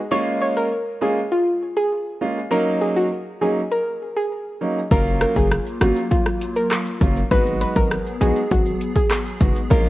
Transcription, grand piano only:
0.11 0.66 G#3 loud
0.11 0.66 A#3 medium
0.11 0.66 C#4 medium
0.11 0.67 F4 loud
1.01 1.18 G#3 medium
1.01 1.18 A#3 medium
1.01 1.18 C#4 medium
1.01 1.18 F4 medium
2.21 2.38 G#3 medium
2.21 2.38 A#3 medium
2.21 2.38 C#4 medium
2.21 2.39 F4 medium
2.51 3.06 F#3 loud
2.51 3.06 A#3 medium
2.51 3.06 C#4 medium
2.51 3.07 D#4 loud
3.41 3.58 F#3 medium
3.41 3.58 A#3 medium
3.41 3.58 C#4 medium
3.41 3.59 D#4 medium
4.61 4.78 F#3 medium
4.61 4.78 A#3 medium
4.61 4.78 C#4 medium
4.61 4.78 D#4 medium
4.91 5.46 F#3 medium
4.91 5.46 A#3 medium
4.91 5.47 C#4 medium
4.91 5.47 F4 loud
5.81 5.98 F#3 medium
5.81 5.99 A#3 medium
5.81 5.99 C#4 medium
5.81 5.99 F4 medium
7.01 7.18 F#3 medium
7.01 7.18 A#3 medium
7.01 7.18 C#4 medium
7.01 7.19 F4 medium
7.31 7.86 G#3 medium
7.31 7.86 B3 medium
7.31 7.86 D#4 medium
7.31 7.87 F#4 loud
8.21 8.38 G#3 medium
8.21 8.38 B3 medium
8.21 8.38 D#4 medium
8.21 8.38 F#4 medium
9.40 9.58 G#3 medium
9.40 9.58 B3 medium
9.40 9.58 D#4 medium
9.40 9.58 F#4 medium
9.70 9.89 G#3 medium
9.70 9.89 A#3 medium
9.70 9.89 C#4 medium
9.70 9.89 F4 loud

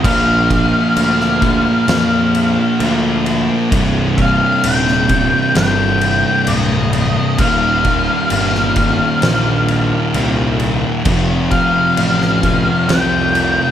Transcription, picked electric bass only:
0.05 0.73 A#1 loud
0.97 1.65 D2 medium
1.89 2.56 F2 loud
2.80 3.48 D2 medium
3.72 4.40 C1 medium
4.64 5.32 D#1 medium
5.56 6.23 G1 medium
6.48 7.15 D1 medium
7.39 8.07 D#1 loud
8.31 8.99 G1 loud
9.23 9.91 A#1 medium
10.14 10.82 C2 loud
11.06 11.74 F1 medium
11.98 12.66 A1 loud
12.89 13.57 C2 medium

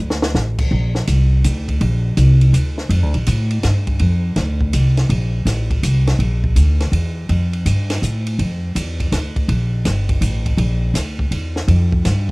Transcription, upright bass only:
0.00 0.33 D2 medium
0.34 0.70 A1 medium
0.71 1.07 A#1 medium
1.08 1.43 C2 medium
1.44 1.80 D2 medium
1.81 2.16 A#1 medium
2.17 2.52 C2 medium
2.53 2.89 D2 medium
2.89 3.02 F2 medium
3.02 3.14 D2 medium
3.15 3.26 A#1 medium
3.27 3.63 A2 medium
3.64 3.99 G2 medium
4.00 4.35 F2 medium
4.36 4.72 D2 medium
4.74 5.09 C2 medium
5.09 5.45 A#1 medium
5.45 5.81 A1 medium
5.83 6.18 C2 medium
6.19 6.55 A#1 medium
6.56 6.91 D2 medium
6.92 7.28 E2 medium
7.29 7.65 F2 medium
7.66 8.01 G2 medium
8.02 8.38 A2 medium
8.39 8.75 F2 medium
8.75 9.11 E2 medium
9.12 9.48 D2 medium
9.48 9.84 A#1 medium
9.85 10.20 G1 medium
10.21 10.57 A1 medium
10.57 10.93 A#1 medium
10.94 11.30 D2 medium
11.31 11.67 E2 medium
11.68 12.04 F2 medium
12.05 12.31 G2 medium

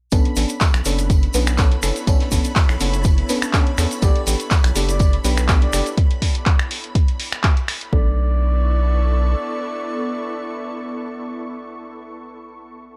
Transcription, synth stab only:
0.12 0.34 B3 loud
0.12 0.34 C#4 medium
0.12 0.34 D4 loud
0.12 0.34 A4 loud
0.37 0.52 B3 medium
0.37 0.52 C#4 medium
0.37 0.52 D4 medium
0.37 0.52 A4 medium
0.85 1.31 B3 medium
0.85 1.31 C#4 medium
0.85 1.31 D4 medium
0.85 1.31 A4 medium
1.34 1.49 B3 medium
1.34 1.49 C#4 medium
1.34 1.49 D4 medium
1.34 1.49 B4 loud
1.59 1.73 B3 loud
1.59 1.74 C#4 medium
1.59 1.74 D4 medium
1.59 1.74 A4 loud
1.83 1.98 B3 medium
1.83 1.98 C#4 medium
1.83 1.98 D4 medium
1.83 1.98 A4 loud
2.07 2.29 B3 loud
2.07 2.29 C#4 medium
2.07 2.29 D4 medium
2.07 2.29 A4 loud
2.32 2.47 B3 medium
2.32 2.47 C#4 medium
2.32 2.47 D4 medium
2.32 2.47 A4 medium
2.80 3.27 B3 medium
2.80 3.27 C#4 medium
2.80 3.27 D4 medium
2.80 3.27 A4 medium
3.29 3.44 B3 medium
3.29 3.44 C#4 medium
3.29 3.44 D4 medium
3.29 3.44 B4 loud
3.54 3.69 B3 loud
3.54 3.69 C#4 medium
3.54 3.69 D4 medium
3.54 3.69 A4 loud
3.78 3.93 B3 medium
3.78 3.93 C#4 medium
3.78 3.93 D4 medium
3.78 3.93 A4 loud
4.02 4.24 B3 loud
4.02 4.24 D4 medium
4.02 4.24 G4 medium
4.02 4.24 A4 loud
4.27 4.42 B3 medium
4.27 4.42 D4 medium
4.27 4.42 G4 medium
4.27 4.42 A4 medium
4.76 5.22 B3 medium
4.76 5.22 D4 medium
4.76 5.22 G4 medium
4.76 5.22 A4 medium
5.24 5.39 B3 medium
5.24 5.39 D4 medium
5.24 5.39 G4 medium
5.24 5.39 B4 loud
5.49 5.64 B3 loud
5.49 5.64 D4 medium
5.49 5.64 G4 medium
5.49 5.64 A4 loud
5.73 5.88 B3 medium
5.73 5.88 D4 medium
5.73 5.88 G4 medium
5.73 5.88 A4 loud
7.93 12.04 A3 medium
7.93 12.04 B3 medium
7.93 12.04 D4 medium
7.93 12.04 A4 loud

